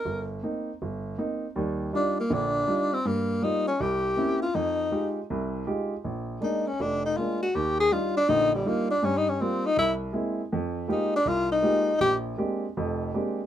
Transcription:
X:1
M:4/4
L:1/8
Q:"Swing" 1/4=161
K:Cm
V:1 name="Tenor saxophone"
B z6 z | [K:Eb] z2 D B, D3 C | B,2 E _D G3 F | E3 z4 z |
z2 E _D =D E F _G | G A F D E G, B, D | (3_D E D C E =E z3 | z2 E D F E3 |
G z6 z |]
V:2 name="Grand piano"
G,,,2 [B,CE] z G,,,2 [B,CE] z | [K:Eb] [E,,G,]2 [G,DEF] z [B,,,D,]2 [G,DEF] z | G,,2 [G,B,F] z C,,2 [B,C_D=E] z | F,,2 [A,EFG] z [C,,C,]2 [A,EFG] z |
B,,,2 [A,B,D] z F,,,2 [A,B,D] z | E,,2 [G,DEF] z [B,,,D,]2 [G,DEF] z | [G,,G,]2 [G,B,F] z C,,2 [A,B,C=E] z | F,,2 [A,B,EFG] z C,,2 [A,B,EFG] z |
B,,,2 [A,B,CDG] z [F,,,F,,]2 [A,B,CDG] z |]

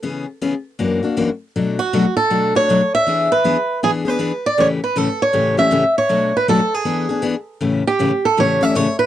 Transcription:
X:1
M:4/4
L:1/16
Q:"Swing" 1/4=158
K:Edor
V:1 name="Steel-string acoustic guitar"
z16 | z2 F4 A4 c4 e2- | e2 B6 ^G2 B4 d2 | c2 B2 A2 c4 e4 c2- |
c2 B2 A2 ^G6 z4 | z2 G4 A2 c2 e2 c2 B2 |]
V:2 name="Steel-string acoustic guitar"
[C,E,B,C^G]2 z2 [C,E,B,CG] z3 [F,,E,^A,DF]2 [A,DF]2 [F,,E,A,DF] z3 | [B,,F,A,DF]2 z2 [B,,F,A,DF] z3 [B,,F,A,DF]2 [A,DF]2 [B,,F,A,DF] z3 | [E,B,D^G]2 z2 [E,B,DG] z3 [E,B,DG]2 [B,DG]2 [E,B,DG] z3 | [A,,C,E,A,CG]2 z2 [A,,C,E,A,CG] z3 [A,,C,E,A,CG]2 [E,A,CG]2 [A,,C,E,A,CG] z3 |
[B,,F,A,DF]2 z2 [B,,F,A,DF] z3 [E,B,D^G]2 [B,DG]2 [E,B,DG] z3 | [A,,C,E,A,CG]2 z2 [A,,C,E,A,CG] z3 [A,,C,E,A,CG]2 [E,A,CG]2 [A,,C,E,A,CG] z3 |]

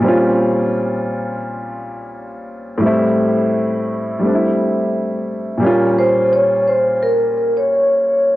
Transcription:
X:1
M:4/4
L:1/16
Q:"Swing 16ths" 1/4=86
K:Bblyd
V:1 name="Vibraphone"
z16 | z16 | z2 c2 _d2 c2 B3 d4- d |]
V:2 name="Upright piano"
[B,,G,C_DF]16 | [A,,G,A,CE]8 [G,A,CDE]8 | [B,,G,B,_DF]16 |]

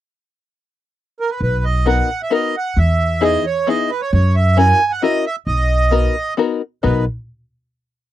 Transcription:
X:1
M:3/4
L:1/16
Q:1/4=133
K:B
V:1 name="Accordion"
z8 z2 A B | B2 d2 f3 e d2 f2 | e4 d2 c2 d2 B c | c2 e2 g3 f d2 e2 |
d8 z4 | B2 z8 z2 |]
V:2 name="Five-string banjo"
z12 | z4 [B,DFA]2 z2 [B,DFA]2 z2 | z4 [B,DEG]2 z2 [B,DEG]2 z2 | z4 [CEFA]2 z2 [CEFA]2 z2 |
z4 [B,DFA]2 z2 [B,DFA]2 z2 | [B,DFA]2 z8 z2 |]
V:3 name="Upright bass" clef=bass
z12 | B,,,8 z4 | E,,8 z4 | F,,8 z4 |
B,,,8 z4 | B,,,2 z8 z2 |]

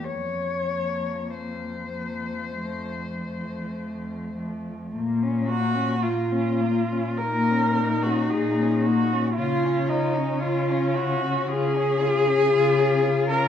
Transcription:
X:1
M:4/4
L:1/16
Q:1/4=55
K:Bbm
V:1 name="Cello"
d4 c8- c2 z2 | z8 E8 | D12 F4 |]
V:2 name="Cello"
z2 B,4 B,2 =A,2 A,4 A,2 | z2 G2 F4 B3 G A2 G2 | F2 E2 F2 G2 A6- A B |]
V:3 name="Cello"
z2 F,4 F,2 F,2 F,4 F,2 | B, D B, D B, D B, D B, D B, D B, D B, D | F D F D F D F D F D F D F D F D |]
V:4 name="Cello" clef=bass
F,,4 F,,4 F,,4 F,,4 | B,,4 B,,4 B,,4 B,,4 | D,4 D,4 D,4 D,4 |]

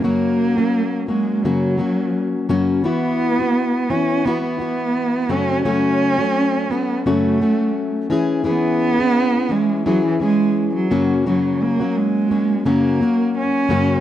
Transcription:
X:1
M:4/4
L:1/16
Q:"Swing 16ths" 1/4=86
K:F#dor
V:1 name="Steel-string acoustic guitar"
[F,,C,F,^A,CF]3 [F,A,CF]3 [F,A,CF]2 [F,,C,F,A,CF]2 [F,A,CF]4 [F,,C,F,A,CF]2 | [E,B,EF]3 [B,EF]3 [E,B,EF]2 [E,B,EF]2 [E,B,EF]4 [F,,C,F,A,CF]2 | [F,,C,F,A,CF]3 [F,A,CF]3 [F,A,CF]2 [F,,C,F,A,CF]2 [F,A,CF]4 [E,CEG]2 | [E,CEG]3 [CEG]3 [E,CEG]2 [E,CEG]2 [E,CEG]4 [F,,C,F,^A,CF]2 |
[F,,C,F,^A,CF]3 [F,A,CF]3 [F,A,CF]2 [F,,C,F,A,CF]2 [F,A,CF]4 [F,,C,F,A,CF]2 |]
V:2 name="Cello"
^A,6 G,2 F,6 z2 | B,6 C2 B, B,4- B, C2 | C6 B,2 A,6 z2 | B,6 G,2 F, E, G,3 F,3 |
F,2 ^A,2 G,4 A,4 C4 |]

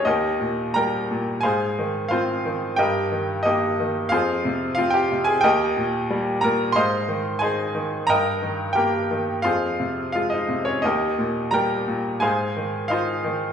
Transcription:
X:1
M:4/4
L:1/16
Q:1/4=89
K:Ebmix
V:1 name="Grand piano"
[EGBe]4 [Bgb]4 [Acfa]4 [Fcf]4 | [GBeg]4 [EGe]4 [FAcf]4 [Ff] [Gg]2 [Aa] | [GBeg]6 [Bb]2 [cefc']4 [Aca]4 | [Begb]4 [GBg]4 [FAcf]4 [Ff] [Ee]2 [Dd] |
[EGBe]4 [Bgb]4 [Acfa]4 [Fcf]4 |]
V:2 name="Grand piano" clef=bass
E,,2 B,,2 G,2 B,,2 A,,2 E,2 C2 E,2 | G,,2 E,2 B,2 E,2 F,,2 C,2 C2 C,2 | E,,2 B,,2 G,2 B,,2 A,,2 E,2 E2 E,2 | G,,2 E,2 B,2 E,2 F,,2 C,2 A,2 C,2 |
E,,2 B,,2 G,2 B,,2 A,,2 E,2 E2 E,2 |]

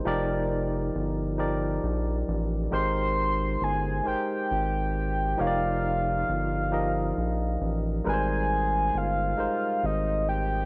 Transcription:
X:1
M:6/8
L:1/8
Q:3/8=45
K:Fmix
V:1 name="Soft synth lead"
z6 | c'2 _a g3 | f4- f z | _a2 f2 e g |]
V:2 name="Tine electric piano"
[F,EGBd]2 z [F,EGBd]2 z | [_A,EGBc]2 z [A,EGBc]2 z | [F,EGB^cd]2 z [F,EGBe]2 z | [G,_A,EB=Bc]2 z [A,EG_Bc]2 z |]
V:3 name="Analog synth bass" clef=bass
F,,,2 G,,,2 B,,, A,,, | _A,,,2 G,,, A,,, A,,,2 | F,,,2 G,,,2 B,,, A,,, | _A,,,2 G,,, A,,, A,,,2 |]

